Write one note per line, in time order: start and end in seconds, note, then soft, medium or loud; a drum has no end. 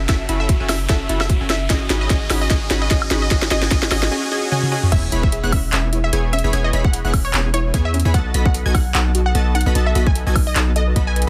0.00 riser medium
0.09 0.27 C#4 medium
0.09 0.13 C#4 medium
0.09 0.27 F#4 medium
0.09 0.27 A4 medium
0.09 0.27 E5 medium
0.09 0.36 E5 loud
0.09 0.27 A5 loud
0.09 kick medium
0.09 snare medium
0.09 closed hi-hat medium
0.29 0.58 F#1 medium
0.29 0.58 C#4 loud
0.29 0.36 E4 loud
0.29 0.58 F#4 medium
0.29 0.58 A4 medium
0.29 0.58 E5 medium
0.29 0.58 B5 loud
0.29 closed hi-hat medium
0.40 0.65 E5 medium
0.49 0.56 F#4 medium
0.49 kick loud
0.49 closed hi-hat medium
0.60 0.88 F#1 loud
0.60 0.73 C#4 loud
0.60 0.73 F#4 medium
0.60 0.73 A4 medium
0.60 0.73 E5 medium
0.60 0.73 G#5 loud
0.69 0.72 C#4 loud
0.69 0.87 E5 medium
0.69 snare medium
0.69 open hi-hat medium
0.69 high woodblock medium
0.89 1.07 C#4 medium
0.89 0.94 C#4 medium
0.89 1.07 F#4 medium
0.89 1.07 A4 medium
0.89 1.07 E5 medium
0.89 1.16 E5 medium
0.89 1.07 A5 loud
0.89 kick loud
0.89 snare medium
0.89 closed hi-hat medium
1.09 1.39 F#1 medium
1.09 1.38 C#4 medium
1.09 1.16 E4 medium
1.09 1.38 F#4 medium
1.09 1.38 A4 medium
1.09 1.38 E5 medium
1.09 1.38 B5 loud
1.09 closed hi-hat medium
1.21 1.46 E5 medium
1.21 snare medium
1.21 high woodblock medium
1.30 1.36 F#4 loud
1.30 kick loud
1.30 closed hi-hat medium
1.41 1.68 F#1 loud
1.41 1.53 C#4 medium
1.41 1.53 F#4 medium
1.41 1.53 A4 medium
1.41 1.53 E5 medium
1.41 1.53 G#5 loud
1.50 1.52 C#4 loud
1.50 1.67 E5 medium
1.50 snare medium
1.50 closed hi-hat medium
1.70 1.88 G#1 medium
1.70 1.88 C#4 medium
1.70 1.74 C#4 medium
1.70 1.88 F#4 medium
1.70 1.88 G#4 medium
1.70 1.88 D#5 medium
1.70 1.97 D#5 loud
1.70 1.88 G#5 loud
1.70 kick loud
1.70 snare medium
1.70 closed hi-hat medium
1.90 2.08 G#1 loud
1.90 2.09 C#4 loud
1.90 1.97 D#4 loud
1.90 2.09 F#4 medium
1.90 2.09 G#4 medium
1.90 2.09 D#5 medium
1.90 2.09 B5 loud
1.90 snare medium
1.90 closed hi-hat medium
2.01 2.09 D#5 medium
2.10 2.28 C#4 medium
2.10 2.15 C#4 medium
2.10 2.28 F#4 medium
2.10 2.28 G#4 medium
2.10 2.28 D#5 medium
2.10 2.37 D#5 loud
2.10 2.28 G#5 loud
2.10 kick loud
2.10 snare medium
2.10 closed hi-hat medium
2.30 2.49 G#1 loud
2.30 2.49 C#4 loud
2.30 2.37 D#4 loud
2.30 2.49 F#4 loud
2.30 2.49 G#4 medium
2.30 2.49 D#5 medium
2.30 2.49 B5 loud
2.30 snare medium
2.30 open hi-hat loud
2.30 high woodblock medium
2.41 2.49 D#5 medium
2.50 2.68 C#4 medium
2.50 2.55 C#4 medium
2.50 2.68 F#4 medium
2.50 2.68 G#4 medium
2.50 2.68 D#5 medium
2.50 2.77 D#5 loud
2.50 2.68 G#5 loud
2.50 kick loud
2.50 snare medium
2.50 closed hi-hat medium
2.70 2.89 G#1 medium
2.70 2.89 C#4 medium
2.70 2.77 D#4 loud
2.70 2.89 F#4 medium
2.70 2.89 G#4 medium
2.70 2.89 D#5 medium
2.70 2.89 B5 loud
2.70 snare medium
2.70 closed hi-hat medium
2.82 2.89 D#5 loud
2.91 3.09 C#4 loud
2.91 2.95 C#4 medium
2.91 3.09 F#4 medium
2.91 3.09 G#4 medium
2.91 3.09 D#5 medium
2.91 3.17 D#5 loud
2.91 3.09 G#5 loud
2.91 kick loud
2.91 snare medium
2.91 closed hi-hat medium
3.02 high woodblock medium
3.11 3.29 G#1 loud
3.11 3.29 C#4 loud
3.11 3.18 D#4 loud
3.11 3.29 F#4 medium
3.11 3.29 G#4 medium
3.11 3.29 D#5 medium
3.11 3.29 B5 loud
3.11 snare medium
3.11 closed hi-hat medium
3.22 3.30 D#5 medium
3.31 3.49 C#4 loud
3.31 3.35 C#4 medium
3.31 3.49 F#4 medium
3.31 3.49 G#4 medium
3.31 3.49 D#5 medium
3.31 3.50 D#5 loud
3.31 3.49 G#5 loud
3.31 kick loud
3.31 snare medium
3.31 closed hi-hat medium
3.42 snare medium
3.51 3.69 G#1 medium
3.51 3.69 C#4 loud
3.51 3.56 C#4 medium
3.51 3.69 F#4 medium
3.51 3.69 G#4 medium
3.51 3.69 D#5 medium
3.51 3.70 D#5 loud
3.51 3.69 G#5 loud
3.51 snare medium
3.51 closed hi-hat medium
3.62 snare medium
3.71 3.90 G#1 loud
3.71 3.89 C#4 medium
3.71 3.76 C#4 medium
3.71 3.89 F#4 medium
3.71 3.89 G#4 medium
3.71 3.89 D#5 medium
3.71 3.90 D#5 loud
3.71 3.89 G#5 loud
3.71 kick loud
3.71 snare medium
3.71 closed hi-hat medium
3.82 snare medium
3.91 4.10 G#1 medium
3.91 4.09 C#4 loud
3.91 3.96 C#4 medium
3.91 4.09 F#4 loud
3.91 4.09 G#4 medium
3.91 4.09 D#5 medium
3.91 4.10 D#5 loud
3.91 4.09 G#5 loud
3.91 snare loud
3.91 open hi-hat loud
3.91 high woodblock medium
4.03 snare medium
4.11 4.29 C#4 loud
4.11 4.29 F#4 medium
4.11 4.29 G#4 medium
4.11 4.29 D#5 medium
4.11 4.29 G#5 loud
4.32 4.50 C#4 medium
4.32 4.50 F#4 medium
4.32 4.50 G#4 medium
4.32 4.50 D#5 medium
4.32 4.50 G#5 loud
4.52 4.70 C#4 medium
4.52 4.70 F#4 medium
4.52 4.70 G#4 medium
4.52 4.70 D#5 medium
4.52 4.70 G#5 loud
4.52 high tom medium
4.63 high tom medium
4.72 4.90 C#4 medium
4.72 4.90 F#4 medium
4.72 4.90 G#4 medium
4.72 4.90 D#5 medium
4.72 4.90 G#5 loud
4.83 mid tom medium
4.92 5.10 E1 loud
4.92 5.10 B3 medium
4.92 4.97 C#4 medium
4.92 5.10 E4 medium
4.92 5.10 G#4 medium
4.92 5.10 C#5 medium
4.92 5.19 E5 loud
4.92 5.10 G#5 loud
4.92 5.10 G#6 loud
4.92 kick loud
4.92 closed hi-hat medium
4.92 crash loud
4.92 sub drop medium
5.12 5.41 E1 medium
5.12 5.41 B3 loud
5.12 5.41 E4 medium
5.12 5.19 E4 loud
5.12 5.41 G#4 medium
5.12 5.41 C#5 medium
5.12 5.41 B5 loud
5.12 5.41 B6 loud
5.12 closed hi-hat medium
5.23 5.49 E5 loud
5.23 kick loud
5.32 5.39 G#4 loud
5.32 closed hi-hat medium
5.44 5.71 E1 loud
5.44 5.56 B3 loud
5.44 5.56 E4 loud
5.44 5.56 G#4 medium
5.44 5.56 C#5 medium
5.44 5.56 F#5 loud
5.44 5.56 F#6 loud
5.52 5.55 C#4 loud
5.52 5.70 E5 medium
5.52 kick loud
5.52 open hi-hat loud
5.52 high woodblock medium
5.73 6.11 E1 loud
5.73 6.11 B3 medium
5.73 5.77 C#4 medium
5.73 6.11 E4 medium
5.73 6.11 G#4 medium
5.73 6.11 C#5 medium
5.73 5.99 E5 medium
5.73 6.11 G#5 medium
5.73 6.11 G#6 medium
5.73 clap loud
5.73 closed hi-hat medium
5.93 5.99 E4 medium
5.93 closed hi-hat medium
6.04 6.29 E5 medium
6.13 6.42 E1 medium
6.13 6.34 B3 medium
6.13 6.34 E4 medium
6.13 6.34 G#4 medium
6.13 6.20 G#4 loud
6.13 6.34 C#5 medium
6.13 6.34 G#5 loud
6.13 6.34 G#6 loud
6.13 closed hi-hat medium
6.33 6.36 C#4 loud
6.33 6.60 E5 loud
6.33 closed hi-hat medium
6.39 closed hi-hat medium
6.44 6.51 E1 loud
6.44 6.51 B3 medium
6.44 6.51 E4 medium
6.44 6.51 G#4 medium
6.44 6.51 C#5 medium
6.44 6.51 B5 loud
6.44 6.51 B6 medium
6.53 6.71 E1 loud
6.53 6.71 B3 loud
6.53 6.58 C#4 medium
6.53 6.71 E4 medium
6.53 6.71 G#4 medium
6.53 6.71 C#5 medium
6.53 6.71 G#5 loud
6.53 6.71 G#6 loud
6.53 closed hi-hat medium
6.64 6.81 D#5 medium
6.73 7.02 E1 medium
6.73 7.02 B3 loud
6.73 7.02 E4 medium
6.73 6.80 E4 loud
6.73 7.02 G#4 medium
6.73 7.02 C#5 medium
6.73 7.02 B5 loud
6.73 7.02 B6 loud
6.73 closed hi-hat medium
6.85 7.02 F#5 medium
6.85 kick loud
6.93 7.00 G#4 loud
6.93 closed hi-hat medium
7.05 7.32 E1 loud
7.05 7.17 B3 loud
7.05 7.17 E4 medium
7.05 7.17 G#4 loud
7.05 7.17 C#5 medium
7.05 7.17 F#5 loud
7.05 7.17 F#6 loud
7.14 7.16 C#4 loud
7.14 kick loud
7.14 open hi-hat loud
7.14 high woodblock medium
7.25 7.50 C#5 medium
7.34 7.72 E1 loud
7.34 7.72 B3 medium
7.34 7.38 C#4 medium
7.34 7.72 E4 medium
7.34 7.72 G#4 medium
7.34 7.72 C#5 medium
7.34 7.72 G#5 medium
7.34 7.72 G#6 medium
7.34 clap loud
7.34 closed hi-hat medium
7.54 7.60 E4 loud
7.54 7.80 C#5 loud
7.54 closed hi-hat medium
7.74 8.03 E2 loud
7.74 7.95 B3 medium
7.74 7.95 E4 medium
7.74 7.95 G#4 medium
7.74 7.81 G#4 loud
7.74 7.95 C#5 medium
7.74 7.95 G#5 loud
7.74 7.95 G#6 medium
7.74 kick medium
7.74 closed hi-hat medium
7.85 8.11 E5 medium
7.94 7.97 C#4 loud
7.94 closed hi-hat medium
8.00 closed hi-hat medium
8.05 8.16 E2 loud
8.05 8.12 B3 medium
8.05 8.12 E4 medium
8.05 8.12 G#4 medium
8.05 8.12 C#5 medium
8.05 8.12 B5 loud
8.05 8.12 B6 medium
8.14 8.33 B1 medium
8.14 8.32 B3 medium
8.14 8.19 D#4 medium
8.14 8.32 F#4 medium
8.14 8.32 A4 medium
8.14 8.32 D#5 medium
8.14 8.41 F#5 loud
8.14 8.32 A6 loud
8.14 kick loud
8.14 closed hi-hat medium
8.34 8.63 B1 loud
8.34 8.63 B3 loud
8.34 8.63 F#4 medium
8.34 8.41 F#4 loud
8.34 8.63 A4 medium
8.34 8.63 D#5 medium
8.34 8.63 B5 loud
8.34 8.63 B6 loud
8.34 closed hi-hat medium
8.46 8.71 F#5 loud
8.46 kick loud
8.54 8.61 A4 loud
8.54 closed hi-hat medium
8.66 8.93 B1 loud
8.66 8.78 B3 loud
8.66 8.78 F#4 medium
8.66 8.78 A4 medium
8.66 8.78 D#5 medium
8.66 8.78 G#5 loud
8.66 8.78 G#6 loud
8.75 8.77 D#4 loud
8.75 8.92 F#5 medium
8.75 kick loud
8.75 open hi-hat medium
8.75 high woodblock medium
8.95 9.33 B1 loud
8.95 9.33 B3 medium
8.95 8.99 D#4 medium
8.95 9.33 F#4 medium
8.95 9.33 A4 medium
8.95 9.33 D#5 medium
8.95 9.21 F#5 medium
8.95 9.33 A5 medium
8.95 9.33 A6 medium
8.95 clap loud
8.95 closed hi-hat medium
9.15 9.22 F#4 loud
9.15 closed hi-hat medium
9.26 9.51 F#5 medium
9.35 9.64 B1 medium
9.35 9.56 B3 medium
9.35 9.56 F#4 medium
9.35 9.42 A4 loud
9.35 9.56 A4 medium
9.35 9.56 D#5 medium
9.35 9.56 A5 loud
9.35 9.56 A6 loud
9.35 closed hi-hat medium
9.55 9.58 D#4 loud
9.55 9.82 F#5 loud
9.55 closed hi-hat soft
9.61 closed hi-hat medium
9.66 9.73 B1 medium
9.66 9.73 B3 medium
9.66 9.73 F#4 medium
9.66 9.73 A4 medium
9.66 9.73 D#5 medium
9.66 9.73 B5 loud
9.66 9.73 B6 medium
9.75 9.94 B1 medium
9.75 9.93 B3 medium
9.75 9.80 D#4 medium
9.75 9.93 F#4 medium
9.75 9.93 A4 medium
9.75 9.93 D#5 medium
9.75 9.93 A5 loud
9.75 9.93 A6 loud
9.75 closed hi-hat medium
9.86 10.03 E5 medium
9.95 10.25 B1 loud
9.95 10.24 B3 loud
9.95 10.24 F#4 medium
9.95 10.02 F#4 loud
9.95 10.24 A4 medium
9.95 10.24 D#5 medium
9.95 10.24 B5 loud
9.95 10.24 B6 loud
9.95 closed hi-hat medium
10.06 10.24 G#5 medium
10.06 kick loud
10.15 10.22 A4 loud
10.15 closed hi-hat medium
10.27 10.54 B1 loud
10.27 10.39 B3 loud
10.27 10.39 F#4 medium
10.27 10.39 A4 loud
10.27 10.39 D#5 medium
10.27 10.39 G#5 loud
10.27 10.39 G#6 loud
10.36 10.38 D#4 loud
10.36 kick loud
10.36 open hi-hat medium
10.36 high woodblock medium
10.47 10.72 D#5 loud
10.56 10.94 B1 medium
10.56 10.94 B3 medium
10.56 10.60 D#4 medium
10.56 10.94 F#4 medium
10.56 10.94 A4 medium
10.56 10.94 D#5 medium
10.56 10.94 A5 medium
10.56 10.94 A6 medium
10.56 clap loud
10.56 closed hi-hat medium
10.76 10.83 A4 loud
10.76 11.03 D#5 loud
10.76 closed hi-hat medium
10.87 10.93 B4 medium
10.96 11.25 B1 loud
10.96 11.25 B3 medium
10.96 10.99 D#4 medium
10.96 11.25 F#4 medium
10.96 11.25 A4 medium
10.96 11.25 D#5 medium
10.96 11.25 B5 medium
10.96 11.25 B6 medium
10.96 kick medium
10.96 closed hi-hat medium
11.07 11.29 G#5 medium
11.16 11.19 B4 medium
11.16 closed hi-hat medium
11.22 closed hi-hat medium